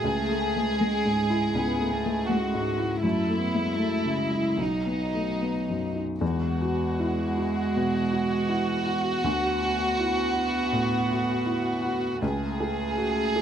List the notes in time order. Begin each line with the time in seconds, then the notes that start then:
Already playing: G#4
0.03 C#2 A3
0.30 A3
0.56 G#3
0.80 G#3
1.05 G#2
1.30 E4
1.54 C#2 B3
1.80 A3
1.93 A3
2.06 G#3
2.28 G#3 F#4
2.54 G#2
2.77 E4
3.03 F#2 A3 E4
3.28 A3
3.40 B3
3.54 G#3
3.76 A3
4.05 C#3
4.16 G#3
4.31 E4
4.57 B1 F#3 D#4
4.86 B3
5.13 A3
5.41 B3
5.70 F#2
5.96 D#4
6.20 E2 G#3 F#4
6.61 F#4
6.99 E4
7.38 F#4
7.76 B2
8.13 F#4
8.49 E4
8.87 F#4
9.24 D2 B3
9.62 F#4
9.99 E4
10.36 F#4
10.72 A2
11.10 F#4
11.46 E4
11.85 F#4
12.22 C#2 A3 G#4
12.60 G#4
12.98 F#4
13.36 G#4